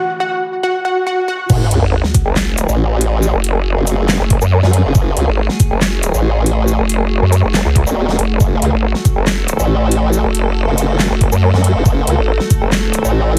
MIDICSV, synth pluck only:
0, 0, Header, 1, 2, 480
1, 0, Start_track
1, 0, Key_signature, 3, "minor"
1, 0, Tempo, 431655
1, 1665, Time_signature, 4, 2, 24, 8
1, 14887, End_track
2, 0, Start_track
2, 0, Title_t, "Synth pluck"
2, 0, Program_c, 0, 84
2, 0, Note_on_c, 0, 66, 72
2, 0, Note_on_c, 0, 78, 92
2, 205, Note_off_c, 0, 66, 0
2, 206, Note_off_c, 0, 78, 0
2, 224, Note_on_c, 0, 66, 79
2, 225, Note_on_c, 0, 78, 94
2, 686, Note_off_c, 0, 66, 0
2, 686, Note_off_c, 0, 78, 0
2, 705, Note_on_c, 0, 66, 80
2, 705, Note_on_c, 0, 78, 97
2, 926, Note_off_c, 0, 66, 0
2, 926, Note_off_c, 0, 78, 0
2, 944, Note_on_c, 0, 66, 78
2, 944, Note_on_c, 0, 78, 104
2, 1166, Note_off_c, 0, 66, 0
2, 1166, Note_off_c, 0, 78, 0
2, 1185, Note_on_c, 0, 66, 76
2, 1185, Note_on_c, 0, 78, 102
2, 1406, Note_off_c, 0, 78, 0
2, 1407, Note_off_c, 0, 66, 0
2, 1425, Note_on_c, 0, 66, 81
2, 1425, Note_on_c, 0, 78, 109
2, 1646, Note_off_c, 0, 66, 0
2, 1646, Note_off_c, 0, 78, 0
2, 14887, End_track
0, 0, End_of_file